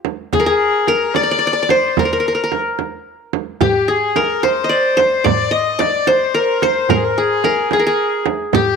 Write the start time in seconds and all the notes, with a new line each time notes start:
0.05 frame drum
0.33 G#4, frame drum
0.40 A#4
0.46 G#4
0.87 A#4, frame drum
1.14 D5, frame drum
1.23 D5
1.31 D5
1.39 D5
1.47 D5
1.53 D5
1.63 D5
1.69 C5, frame drum
1.97 A#4, frame drum
2.05 A#4
2.13 A#4
2.20 A#4
2.28 A#4
2.35 A#4
2.44 A#4
2.52 frame drum
2.79 frame drum
3.33 frame drum
3.61 G4, frame drum, darbuka dum
3.88 G#4
4.16 A#4, darbuka tek, frame drum
4.43 C5, darbuka tek, frame drum
4.64 D#5
4.69 D5
4.97 C5, darbuka tek, frame drum
5.24 D5, frame drum, darbuka dum
5.51 D#5, darbuka ka
5.79 D5, darbuka tek, frame drum
6.07 C5, darbuka tek, frame drum
6.34 A#4
6.62 C5, darbuka tek, frame drum
6.89 A#4, darbuka dum, frame drum
6.96 G#4
7.04 A#4
7.18 G#4
7.44 A#4, darbuka tek, frame drum
7.71 G#4, darbuka tek, frame drum
7.80 A#4
7.87 G#4
8.26 darbuka tek, frame drum
8.53 G4, darbuka dum, frame drum